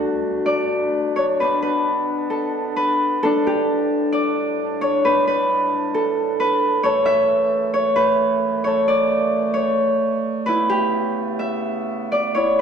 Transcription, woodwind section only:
Already playing: B2 A3 D4
1.37 B3
3.22 A2 G3
6.84 F#2 E3 A3
10.47 C#3 B3

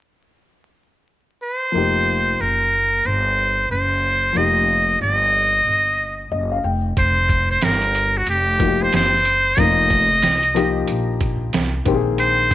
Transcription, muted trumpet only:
1.43 C5
2.41 A#4
3.06 C5
3.71 C5
4.37 D#5
5.02 D#5
6.98 C5
7.51 C5
7.64 A#4
8.17 F#4
8.30 G4
8.83 C5
8.95 C5
9.60 D#5
12.20 C5

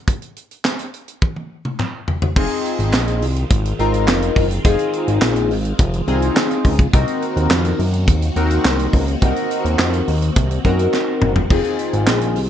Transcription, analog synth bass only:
2.36 F1
2.79 G#1
2.93 A#1
3.22 C2
3.51 G#1
3.79 G#1
4.08 F1
4.36 F#1
4.65 F1
5.08 G#1
5.22 A#1
5.51 G#1
5.79 F1
6.08 C2
6.65 C#2
6.93 C2
7.36 D#2
7.51 F2
7.79 F#2
8.08 D#2
8.36 D#2
8.65 C2
8.93 C#2
9.22 C2
9.65 D#2
9.79 F2
10.08 D#2
10.36 C2
10.65 F#2
11.22 F#1
11.51 F1
11.93 G#1
12.08 A#1
12.36 C2

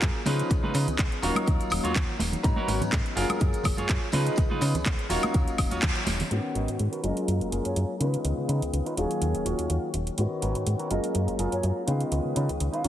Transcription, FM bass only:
0.02 F#2
0.26 C#3
0.51 C#2
0.63 C#3
0.75 C#3
0.88 C#2
0.99 C#2
1.23 D#1
1.48 D#2
1.60 D#1
1.71 D#1
1.84 D#2
1.96 D#2
2.19 D#1
2.44 G#2
2.68 G#1
2.81 G#2
2.93 G#2
3.16 F#1
3.41 F#2
3.54 F#1
3.65 F#1
3.78 F#2
3.89 F#2
4.13 C#3
4.38 C#2
4.51 C#3
4.61 C#3
4.74 C#2
4.86 C#2
5.10 D#1
5.34 D#2
5.47 D#1
5.59 D#1
5.71 D#2
5.83 D#2
6.07 D#1
6.31 G#2
6.55 G#1
6.68 G#2
6.80 G#2
7.04 F#1
7.28 F#2
7.41 F#1
7.52 F#1
7.65 F#2
7.76 F#2
8.00 C#3
8.25 C#2
8.38 C#3
8.49 C#3
8.62 C#2
8.73 C#2
8.98 D#1
9.21 D#2
9.35 D#1
9.46 D#1
9.59 D#2
9.70 D#2
9.94 D#1
10.18 G#2
10.43 G#1
10.56 G#2
10.67 G#2
10.91 F#1
11.15 F#2
11.28 F#1
11.39 F#1
11.52 F#2
11.63 F#2
11.88 C#3
12.12 C#2
12.25 C#3
12.36 C#3
12.50 C#2
12.61 C#2
12.85 D#1

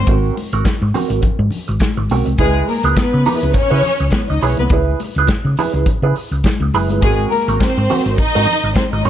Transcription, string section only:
2.39 G#3 G#4
2.68 A#3 A#4
2.96 B3 B4
3.55 C#4 C#5
4.13 B3 B4
4.29 D#4 D#5
4.42 C#4 C#5
4.59 B3 B4
7.02 G#3 G#4
7.30 A#3 A#4
7.61 C4 C5
8.17 D#4 D#5
8.75 C4 C5
8.92 D#4 D#5
9.04 C#4 C#5

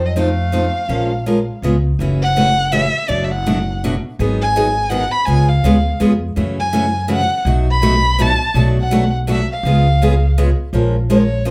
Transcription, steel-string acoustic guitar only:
0.16 F3 C4 D#4 A4
0.52 F3 C4 D#4 A4
0.89 F3 G#3 C#4 F4 A#4
1.26 F3 G#3 C#4 F4 A#4
1.63 C#3 G#3 B3 F4 G#4
2.00 C#3 E3 A3 C#4 F#4
2.36 C#3 E3 A3 C#4 F#4
2.72 C#3 E3 A3 C#4 F#4
3.08 B2 F#3 A3 D4 F#4
3.46 B2 F#3 A3 D4 F#4
3.84 B2 F#3 A3 D4 F#4
4.20 D#3 F#3 B3 D#4 G#4
4.56 D#3 F#3 B3 D#4 G#4
4.90 D#3 F#3 B3 D#4 G#4
5.26 C#3 G#3 B3 F4 G#4
5.64 C#3 G#3 B3 F4 G#4
6.00 C#3 G#3 B3 F4 G#4
6.36 C#3 E3 A3 C#4 F#4
6.73 C#3 E3 A3 C#4 F#4
7.08 C#3 E3 A3 C#4 F#4
7.46 B2 F#3 A3 D#4 F#4
7.82 B2 F#3 A3 D#4 F#4
8.19 B2 F#3 A3 D#4 F#4
8.55 B2 F#3 A3 D4 F#4
8.91 B2 F#3 A3 D4 F#4
9.27 B2 F#3 A3 D4 F#4
9.65 C#3 G#3 B3 F4 G#4
10.02 C#3 G#3 B3 F4 G#4
10.38 C#3 G#3 B3 F4 G#4
10.73 F3 G#3 C#4 F4 A#4
11.10 F3 G#3 C#4 F4 A#4
11.45 F3 G#3 C#4 F4 A#4

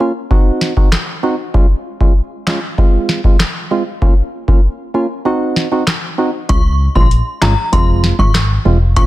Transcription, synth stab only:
0.00 A#3 C#4 F4
0.31 C4 D#4 F#4
0.77 C4 D#4 F#4
1.23 C4 D#4 F#4
1.54 G#3 C#4 F4
2.01 G#3 C#4 F4
2.47 G#3 C#4 F4
2.78 G#3 C4 F4
3.25 G#3 C4 F4
3.71 G#3 C4 F4
4.02 A#3 C#4 F4
4.48 A#3 C#4 F4
4.94 A#3 C#4 F4
5.25 C4 D#4 F#4
5.72 C4 D#4 F#4
6.18 C4 D#4 F#4
6.49 G#3 C#4 F4
6.95 G#3 C#4 F4
7.42 G#3 C#4 F4
7.72 G#3 C4 F4
8.19 G#3 C4 F4
8.65 G#3 C4 F4
8.96 A#3 C#4 F4

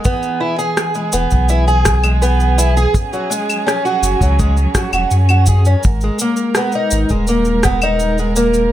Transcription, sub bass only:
1.14 E1
1.32 B1
4.02 F#1
4.21 C#2
4.93 E1
5.11 F#2
5.85 G#1
6.92 G#1
7.11 D#1

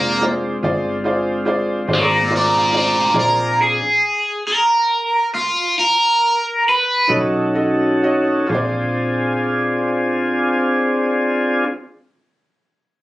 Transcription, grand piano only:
Already playing: F4 G#4 C5 D5
0.21 F4 G#4 C5 D5
0.63 F4 G#4 C5 D5
1.04 F4 G#4 C5 D5
1.45 F4 G#4 C5 D5
1.87 F4 G#4 C5 D5
2.30 F4 G#4 C5 D5
2.72 F4 G#4 C5 D5
3.14 F4 G#4 C5 D5
7.09 F#4 A4 C#5 D#5
7.54 F#4 A4 C#5 D#5
8.02 F#4 A4 C#5 D#5
8.47 F4 G#4
8.52 C5 D5

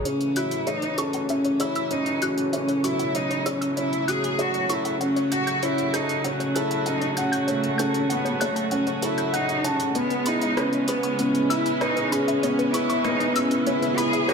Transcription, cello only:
0.05 C#4
0.36 E4
0.67 D#4
0.98 C#4
1.29 C#4
1.61 E4
1.92 D#4
2.24 C#4
2.54 C#4
2.85 E4
3.15 D#4
3.47 C#4
3.78 E4
4.10 G#4
4.40 F#4
4.71 E4
5.01 C#4
5.32 F#4
5.63 E4
5.95 D#4
6.25 C#4
6.56 E4
6.87 D#4
7.16 C#4
7.48 A3
7.80 C#4
8.11 B3
8.41 A3
8.72 C#4
9.04 E4
9.35 D#4
9.66 C#4
9.96 B3
10.27 D#4
10.58 C#4
10.88 B3
11.19 C#4
11.50 E4
11.81 D#4
12.11 C#4
12.43 C#4
12.72 E4
13.04 D#4
13.35 C#4
13.65 E4
13.98 G#4
14.29 F#4

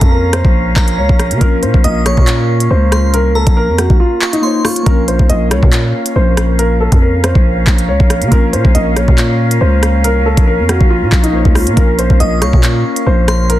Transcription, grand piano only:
0.12 A#4
0.33 C5
0.98 C#5
1.41 A#4
1.62 C5
1.84 D#5
2.06 C#5
2.71 C5
3.14 A#4
3.35 A4
3.57 A#4
3.78 F#4
4.00 F4
4.33 D#4
4.65 F4
4.86 A#4
5.08 C5
5.29 D#5
5.51 C#5
6.16 C5
6.59 A#4
6.81 A4
7.02 A#4
7.24 C5
7.89 C#5
8.32 A#4
8.53 C5
8.75 D#5
8.96 C#5
9.61 C5
10.04 A#4
10.26 A4
10.47 A#4
10.69 F#4
10.90 F4
11.23 D#4
11.55 F4
11.77 A#4
11.99 C5
12.20 D#5
12.42 C#5
13.07 C5
13.50 A#4

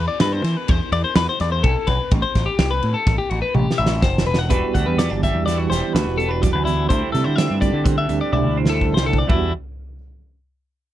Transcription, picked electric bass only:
0.20 G2
0.44 E3
0.69 E2
0.92 E2
1.16 E2
1.41 E2
1.64 B1
1.88 B1
2.12 A1
2.35 A1
2.59 C2
2.84 A2
3.07 A1
3.31 A1
3.55 A1
3.79 A1
4.03 F#1
4.27 E1
4.51 E1
4.75 D2
4.87 E2
5.11 G1
5.35 E2
5.71 E1
5.95 D2
6.07 E1
6.55 D2
6.90 D2
7.14 C3
7.26 D3
7.51 G2
7.74 D3
8.09 D2
8.33 C2
8.44 D2
8.92 C2
9.29 E2

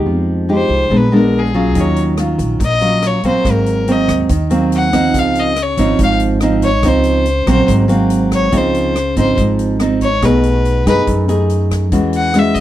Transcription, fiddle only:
0.54 C5
0.97 B4
1.15 A#4
1.39 G#4
1.80 C#5
2.65 D#5
3.07 C#5
3.27 C5
3.51 A#4
3.92 D#5
4.76 F#5
5.19 F5
5.40 D#5
5.62 C#5
6.03 F5
6.64 C#5
6.88 C5
7.51 C5
8.35 C#5
8.57 C5
9.19 C5
10.03 C#5
10.25 B4
10.88 B4
12.17 F#5
12.39 E5
12.54 D#5

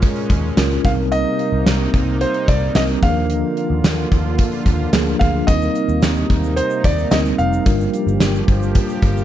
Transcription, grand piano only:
Already playing: F5
0.85 F5
1.12 D#5
2.21 C5
2.48 D5
2.76 D#5
3.03 F5
5.19 F5
5.47 D#5
6.56 C5
6.85 D5
7.11 D#5
7.38 F5

